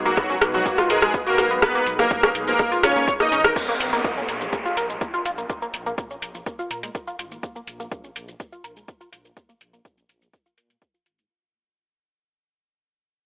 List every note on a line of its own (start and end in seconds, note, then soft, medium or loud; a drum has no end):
0.00 0.12 B1 loud
0.00 3.52 G#3 medium
0.00 3.52 D#4 medium
0.00 1.58 F#4 medium
0.00 3.52 B4 medium
0.05 0.35 F#3 medium
0.05 0.14 A#3 loud
0.05 0.35 F#4 medium
0.05 shaker soft
0.17 0.36 B1 loud
0.17 0.23 B3 medium
0.17 kick loud
0.17 cross-stick medium
0.17 shaker medium
0.30 0.35 C#4 medium
0.30 shaker soft
0.41 0.60 B1 medium
0.41 cross-stick medium
0.41 closed hi-hat medium
0.41 shaker medium
0.54 0.59 F3 medium
0.54 0.76 F#3 medium
0.54 0.76 F#4 medium
0.54 shaker soft
0.66 0.78 A#3 medium
0.66 kick loud
0.66 shaker medium
0.78 0.89 F4 loud
0.78 cross-stick medium
0.78 shaker soft
0.90 1.08 B1 loud
0.90 1.13 G#3 medium
0.90 1.13 G#4 loud
0.90 0.99 A#4 medium
0.90 closed hi-hat loud
0.90 shaker medium
1.02 1.11 G#3 medium
1.02 cross-stick medium
1.02 shaker soft
1.14 1.19 B3 medium
1.14 kick loud
1.14 shaker medium
1.27 1.49 A#3 medium
1.27 1.35 F#4 loud
1.27 1.49 A#4 loud
1.27 shaker soft
1.38 1.57 B1 loud
1.38 1.44 F#4 medium
1.38 cross-stick medium
1.38 closed hi-hat medium
1.38 shaker medium
1.51 1.62 B3 medium
1.51 shaker soft
1.62 1.74 A#3 medium
1.62 1.85 B3 medium
1.62 3.54 G#4 medium
1.62 1.85 B4 loud
1.62 kick loud
1.62 cross-stick medium
1.62 shaker medium
1.75 1.80 A#3 loud
1.75 shaker soft
1.87 2.05 B1 medium
1.87 closed hi-hat loud
1.87 shaker medium
1.99 2.08 A#3 loud
1.99 2.29 A#3 medium
1.99 2.29 A#4 loud
1.99 cross-stick medium
1.99 shaker soft
2.11 2.29 B1 loud
2.11 2.16 B3 medium
2.11 kick loud
2.11 shaker medium
2.23 2.28 C#4 medium
2.23 cross-stick medium
2.23 shaker soft
2.35 2.54 B1 medium
2.35 closed hi-hat medium
2.35 shaker medium
2.47 2.53 F3 medium
2.47 2.70 A#3 medium
2.47 2.70 A#4 loud
2.47 shaker soft
2.59 2.71 A#3 medium
2.59 kick loud
2.59 cross-stick medium
2.59 shaker medium
2.72 2.82 F4 loud
2.72 shaker soft
2.83 3.02 F#1 medium
2.83 3.06 C#4 medium
2.83 2.93 F4 medium
2.83 3.06 C#5 loud
2.83 cross-stick medium
2.83 closed hi-hat loud
2.83 shaker medium
2.96 3.04 A#3 medium
2.96 shaker soft
3.08 3.13 C#5 loud
3.08 kick loud
3.08 shaker medium
3.20 3.29 A#3 medium
3.20 3.43 D#4 medium
3.20 3.43 D#5 loud
3.20 cross-stick medium
3.20 shaker soft
3.32 3.50 G#1 loud
3.32 3.37 C#4 medium
3.32 closed hi-hat medium
3.32 shaker medium
3.44 3.53 A#4 loud
3.44 cross-stick medium
3.44 shaker soft
3.56 3.67 A#3 medium
3.56 kick loud
3.56 crash medium
3.56 downlifter medium
3.56 shaker medium
3.69 3.74 A#3 loud
3.69 shaker soft
3.80 3.99 A#1 medium
3.80 closed hi-hat loud
3.80 shaker medium
3.93 4.01 A#3 loud
3.93 shaker soft
4.04 4.23 A#1 loud
4.04 4.10 A#3 medium
4.04 kick loud
4.04 shaker medium
4.17 4.22 C#4 medium
4.17 shaker soft
4.29 4.47 A#1 medium
4.29 closed hi-hat loud
4.29 shaker medium
4.41 4.46 F3 medium
4.41 shaker soft
4.53 4.65 A#3 medium
4.53 kick loud
4.53 shaker medium
4.65 4.76 F4 loud
4.65 shaker soft
4.77 4.96 A#1 medium
4.77 4.86 A#4 medium
4.77 closed hi-hat loud
4.77 shaker medium
4.90 4.98 G#3 medium
4.90 shaker soft
5.01 5.07 A#3 medium
5.01 kick loud
5.01 shaker medium
5.14 5.22 F4 loud
5.14 shaker soft
5.25 5.44 A#1 loud
5.25 5.31 F4 medium
5.25 closed hi-hat loud
5.25 shaker medium
5.38 5.49 A#3 medium
5.38 shaker soft
5.50 5.61 A#3 medium
5.50 kick loud
5.50 shaker medium
5.62 5.67 A#3 loud
5.62 shaker soft
5.74 5.92 A#1 medium
5.74 closed hi-hat loud
5.74 shaker medium
5.86 5.95 A#3 loud
5.86 shaker soft
5.98 6.17 A#1 loud
5.98 6.03 A#3 medium
5.98 kick loud
5.98 shaker medium
6.11 6.16 C#4 medium
6.11 shaker soft
6.22 6.41 A#1 medium
6.22 closed hi-hat loud
6.22 shaker medium
6.35 6.40 F3 medium
6.35 shaker soft
6.46 6.58 A#3 medium
6.46 kick loud
6.46 shaker medium
6.59 6.70 F4 loud
6.59 shaker soft
6.71 6.89 A#2 medium
6.71 6.80 A#4 medium
6.71 closed hi-hat loud
6.71 shaker medium
6.83 6.91 G#3 medium
6.83 closed hi-hat medium
6.83 shaker soft
6.95 7.00 A#3 medium
6.95 kick loud
6.95 shaker medium
7.07 7.16 F4 loud
7.07 shaker soft
7.19 7.37 G#1 medium
7.19 7.24 F4 medium
7.19 closed hi-hat loud
7.19 shaker medium
7.31 7.42 A#3 medium
7.31 shaker soft
7.43 7.55 A#3 medium
7.43 kick loud
7.43 shaker medium
7.56 7.61 A#3 loud
7.56 shaker soft
7.67 7.86 A#1 loud
7.67 closed hi-hat loud
7.67 shaker medium
7.80 7.88 A#3 loud
7.80 shaker soft
7.92 8.10 A#1 loud
7.92 7.97 A#3 medium
7.92 kick loud
7.92 shaker medium
8.04 8.09 C#4 medium
8.04 shaker soft
8.16 8.34 A#1 medium
8.16 closed hi-hat loud
8.16 shaker medium
8.28 8.33 F3 medium
8.28 shaker soft
8.40 8.52 A#3 medium
8.40 kick loud
8.40 shaker medium
8.52 8.63 F4 loud
8.52 shaker soft
8.64 8.83 A#1 medium
8.64 8.73 A#4 medium
8.64 closed hi-hat loud
8.64 shaker medium
8.77 8.85 G#3 medium
8.77 shaker soft
8.88 8.94 A#3 medium
8.88 kick loud
8.88 shaker medium
9.01 9.09 F4 medium
9.01 shaker soft
9.12 9.31 A#1 medium
9.12 9.18 F4 medium
9.12 closed hi-hat loud
9.12 shaker medium
9.25 9.35 A#3 medium
9.25 shaker soft
9.37 9.48 A#3 medium
9.37 kick loud
9.37 shaker medium
9.49 9.54 A#3 loud
9.49 shaker soft
9.61 9.79 A#1 medium
9.61 closed hi-hat loud
9.61 shaker medium
9.73 9.82 A#3 loud
9.73 shaker soft
9.85 10.04 A#1 loud
9.85 9.90 A#3 medium
9.85 kick loud
9.85 shaker medium
9.98 10.03 C#4 medium
9.98 shaker soft
10.09 10.28 A#1 medium
10.09 closed hi-hat medium
10.09 shaker medium
10.22 10.27 F3 medium
10.22 shaker soft
10.33 10.45 A#3 medium
10.33 kick loud
10.33 shaker medium
10.46 10.57 F4 loud
10.46 shaker soft
10.58 10.76 A#2 medium
10.58 10.67 A#4 medium
10.58 closed hi-hat medium
10.58 shaker medium
10.70 10.79 G#3 medium
10.70 closed hi-hat medium
10.70 shaker soft
10.82 10.87 A#3 medium
10.82 kick loud
10.82 shaker medium
10.94 11.03 F4 medium
10.94 shaker soft
11.06 11.25 G#1 medium
11.06 11.11 F4 medium
11.06 closed hi-hat loud
11.06 shaker medium
11.19 11.30 A#3 medium
11.19 shaker soft